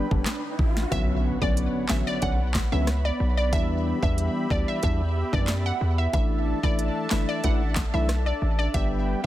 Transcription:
Already playing: D4 B4 G5 B5, riser
0.11 F#1 D3 G3 B3 D4, kick
0.26 cross-stick, snare, clap, closed hi-hat
0.59 A1, kick
0.77 snare
0.91 B1 D3 F#3 B3 C#4 C#5 E5 F#5 B5, kick, closed hi-hat, impact
1.41 B1 D3 F#3 B3 C#4 D5, kick
1.57 closed hi-hat
1.89 A1 D3 F#3 B3 C#4 E5, snare, clap
2.07 D5
2.22 B1 D3 F#3 B3 C#4 F#5, kick, closed hi-hat
2.54 kick, snare, clap
2.72 C#2 D3 F#3 B3 C#4 E5
2.87 cross-stick, snare, closed hi-hat
3.05 D5
3.20 B1
3.37 D5
3.53 E2 E3 G3 B3 D4 G4 E5, kick, closed hi-hat
4.02 E2 E3 G3 B3 D4 E5, kick
4.18 closed hi-hat
4.50 D2 E3 G3 B3 D4 D5, kick
4.68 E5
4.83 E2 E3 G3 B3 D4 E5, kick, closed hi-hat
5.32 F#2 E3 G3 B3 D4 D5, kick
5.47 cross-stick, snare, clap, closed hi-hat
5.66 F#5
5.81 E2
5.98 E5
6.13 A1 E3 A3 D4 E4 A4 E5 A5, kick, closed hi-hat
6.63 A1 E3 A3 D4 E4 D5, kick
6.79 closed hi-hat
7.10 G1 E3 A3 D4 E4 E5, snare, clap
7.29 D5
7.44 A1 E3 A3 D4 E4 F#5, kick, closed hi-hat
7.76 kick, snare, clap
7.94 B1 E3 A3 D4 E4 E5
8.09 cross-stick, snare, closed hi-hat
8.26 D5
8.42 A1
8.59 D5
8.74 G1 G3 B3 D4 G4 B4 E5 G5 B5, kick, closed hi-hat

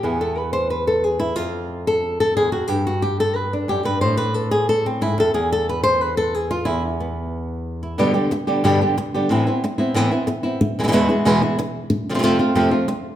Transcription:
0.03 E2 B3 E4 G#4
0.21 A4
0.38 B4
0.53 C5
0.70 B4
0.87 A4
1.04 G#4
1.20 E4
1.36 F2 F4
1.87 A4
2.20 A4
2.37 E2 G#4
2.52 F2 F#4
2.68 G2 G4
2.87 F#4
3.02 G4
3.20 A4
3.36 B4
3.53 D4
3.68 F#2 G4
3.85 G2 B4
4.01 A2 C5
4.17 B4
4.34 A4
4.51 G#4
4.69 A4
4.86 C4
5.01 G#2 E4
5.18 F2 A4
5.34 E2 G#4
5.52 A4
5.69 B4
5.84 C5
6.02 B4
6.17 A4
6.34 G#4
6.51 F4
6.65 E2 E4
7.00 B3
7.83 E4
7.98 G2 B2 D3 G3 B3 G4
8.14 D3 G3 B3 G4
8.31 muted nylon-string guitar stroke
8.47 D3 G3 B3 G4
8.64 G2 B2 D3 G3 B3 G4
8.81 D3 G3 B3 G4
8.97 muted nylon-string guitar stroke
9.14 D3 G3 B3 G4
9.30 A2 E3 B3 C4 E4
9.47 B3 C4 E4
9.64 muted nylon-string guitar stroke
9.78 B3 C4 E4
9.94 A2 E3 B3 C4 E4
10.11 B3 C4 E4
10.27 muted nylon-string guitar stroke
10.43 B3 C4 E4
10.61 muted nylon-string guitar stroke
10.79 B2 E3 G#3 B3 E4
10.83 B2 E3 G#3 B3 E4
10.88 B2 E3 G#3 B3 E4
10.92 E2 B2 E3 G#3 B3 E4
11.09 E3 G#3 B3 E4
11.25 E2 B2 E3 G#3 B3 E4
11.42 E3 G#3 B3 E4
11.59 muted nylon-string guitar stroke
11.90 muted nylon-string guitar stroke
12.09 C3 F3 A3 C4 F4
12.14 C3 F3 A3 C4 F4
12.19 F2 C3 F3 A3 C4 F4
12.24 C3 F3 A3 C4 F4
12.39 F3 A3 C4 F4
12.55 F2 C3 F3 A3 C4 F4
12.71 F3 A3 C4 F4
12.88 muted nylon-string guitar stroke

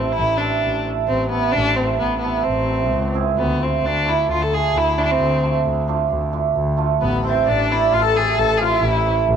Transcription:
Already playing: C4
0.12 E4
0.17 A1
0.38 C4 D4 E4 A4
0.63 A1
0.85 C4 E4 A4
1.08 A1 C4
1.30 B3 C4 E4 A4
1.52 A1 D4
1.76 C4 E4 A4
1.99 A1 B3
2.19 B3
2.23 C4 E4 A4
2.43 A1 C4
2.68 C4 E4 A4
2.90 C#2
3.14 C4 E4 G#4
3.36 D2 B3
3.60 A3 C4 D4 F4
3.82 D2
3.86 D4
4.05 A3 D4 E4 F4
4.28 D2 F4
4.42 A4
4.51 A3 D4 F4 G#4
4.73 D2
4.77 E4
4.97 A3 D4 E4 G#4
5.05 D4
5.11 C4
5.18 D2
5.42 A3 D4 F4
5.64 D2
5.87 A3 D4 F4
6.10 D2
6.32 A3 D4 F4
6.54 D2
6.77 A3 D4 F4
7.00 A1 B3
7.23 A3 C4 E4
7.45 A1 D4
7.68 A3 C4 E4
7.91 A1 F4
8.01 A4
8.13 A3 C4 E4 G#4
8.36 A1 A4
8.57 A3 C4 F4 G#4
8.62 E4 F4
8.72 E4
8.82 A1
9.05 A3 C4 E4
9.27 A1

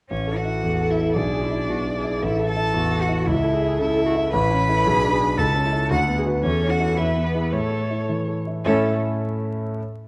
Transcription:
0.10 A1 C#4 C#5
0.27 A4
0.36 F#4 F#5
0.45 E4
0.63 E2 A4
0.80 A4
0.90 E4 E5
0.98 E4
1.16 B1 D4 G#4 D5
1.33 G#4
1.43 E4
1.51 E4
1.69 B2 F#4
1.86 G#4
1.95 G#4
2.04 E4
2.22 A1 E4 A4 E5
2.39 A4
2.48 A4 A5
2.56 E4
2.74 E2 F#4
2.91 A4
3.01 F#4 F#5
3.09 E4
3.26 C#2 E4 E5
3.44 A4
3.53 G#4
3.62 E4
3.79 C#3 E4 A4 E5
3.97 A4
4.06 F#4
4.15 E4
4.32 A1 E4 B4 B5
4.50 C#4
4.69 E4 A4
4.86 B1 G#4
5.04 D4
5.12 G#4
5.21 D4 G#4
5.38 C#2 A4 A5
5.55 C#4
5.65 E4
5.72 E4 A4
5.90 D2 F#4 F#5
6.08 B3
6.17 G#4
6.26 F#4 B4
6.43 E2 C#4 A4 C#5
6.62 C#4
6.70 F#4 F#5
6.80 E4 A4
6.97 E2 E4 B4 E5
7.16 B3
7.24 B3 B4
7.34 E4 G#4
7.51 A2 A3 A4 C#5
7.71 A4
7.90 E4
8.09 E3
8.28 A4
8.47 E4
8.65 A2 A3 C#4 E4 A4 E5

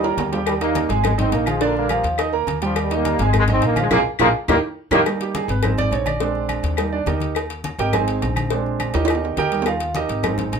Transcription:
Already playing: D#2 D#3 G3
0.03 A#3 A#4 A#5, high conga, high timbale
0.17 D#2, cowbell, high conga, low timbale, low agogo
0.32 D3 F3 G3 G4 G5, cowbell, low timbale
0.46 D#3 G3, cowbell, high conga, low agogo, claves
0.61 D#3 G3 A#3 D#4 D#5, cowbell, high conga
0.75 cowbell, high conga, low agogo
0.89 G#1 F3 G#3 G#4 G#5, cowbell, high conga
1.04 D#3 G#3, cowbell, high conga, low conga, low agogo, claves
1.18 D#3 G#3 C4 D#4 D#5, cowbell, high conga, low conga
1.32 A#1 D#3 A#3, cowbell, high conga, low agogo
1.46 F3 G#3 F4 F5, cowbell, high conga, low agogo, claves
1.61 D3 F3 A#3 D4 D5, cowbell
1.76 G3 A#3, high conga
1.89 F3 F4 F5, cowbell, high conga, low agogo, claves
2.04 D#2, cowbell, high conga
2.18 D#4 D#5 D#6, cowbell, high conga, low agogo, claves
2.33 A#3 A#4 A#5, high conga
2.47 D#2, cowbell, high conga, low agogo
2.62 D3 F3 G3 G4 G5, cowbell
2.76 D#3 G3, cowbell, high conga, low agogo, claves
2.90 D#3 G3 A#3 D#4 D#5, cowbell, high conga
3.05 cowbell, high conga, low agogo
3.19 G#1 F3 G#3 G#4 G#5, cowbell, high conga
3.24 G#3
3.33 D#3, cowbell, high conga, low conga, low agogo, claves
3.37 G#3
3.48 D#3 G#3 C4 D#4 D#5, cowbell, high conga, low conga
3.62 A#1 D#3, cowbell, high conga, low agogo
3.66 A#3
3.76 F3 F4 F5, cowbell, high conga, low agogo, claves
3.81 G#3
3.91 A#1 F3 G#3 A#3 F4 G#4 A#4, cowbell, low conga, high timbale, claves
4.19 A#1 F3 G#3 A#3 F4 G#4 A#4, cowbell, low conga, high timbale, claves
4.48 D#2 D#3 G3 A#3 D#4 G4 A#4, cowbell, low conga, high timbale, claves
4.91 D#2 D#3 G3 A#3 D#4 G4 A#4, cowbell, low conga, high timbale, claves
5.06 G3 A#3 D#4, cowbell, high conga, low agogo, claves
5.20 G4, cowbell, high conga
5.35 G#4, cowbell, high conga, low agogo
5.48 G#1 B4, cowbell, high conga
5.63 G#3 C4 D#4 C5, cowbell, high conga, low conga, low agogo, claves
5.78 D5, cowbell, high conga, low conga
5.91 A#1 C#5, cowbell, high conga, low agogo
6.06 D5, cowbell, high conga, low agogo, claves
6.20 G#3 C4 D4, cowbell, high conga
6.35 high conga
6.49 cowbell, high conga, low agogo, claves
6.63 D#2, cowbell, high conga
6.77 G3 A#3 D#4, cowbell, high conga, low agogo, claves
6.92 D4 D5, high conga
7.06 D#2 D#4 G4 A#4 D#5, cowbell, high conga, low timbale, low agogo
7.20 cowbell, high conga
7.35 cowbell, high conga, low agogo, claves
7.50 cowbell, high conga
7.64 cowbell, high conga, low agogo
7.78 G#1 G4 A#4 D#5 G5, cowbell, high conga
7.93 G#3 C4 D#4 G#4 C5 D#5 G#5, cowbell, high conga, low conga, low agogo, claves
8.08 cowbell
8.22 A#1, cowbell, high conga, low timbale, low agogo
8.36 cowbell, high conga, low agogo, claves
8.50 G#3 C4 D4, cowbell
8.66 high conga
8.80 cowbell, high conga, low agogo, claves
8.94 D#2 D#4 G4 A#4 D#5, cowbell, high conga, high timbale
9.05 cowbell, high timbale, claves
9.10 high conga, low agogo
9.15 low timbale
9.24 high conga, low timbale
9.37 D#2 G4 A#4 D#5 G5, cowbell, high conga, low agogo
9.52 G3 A#3 D#4, cowbell
9.62 cowbell, low timbale, claves
9.67 F4 F5, high conga, low agogo
9.80 cowbell, high conga
9.95 D#4 G4 A#4 D#5, cowbell, high conga, low agogo
10.09 G#1, cowbell, high conga
10.23 G#3 C4 D#4, cowbell, high conga, low conga, low agogo, claves
10.38 cowbell, high conga, low conga
10.52 A#1, cowbell, high conga, low agogo

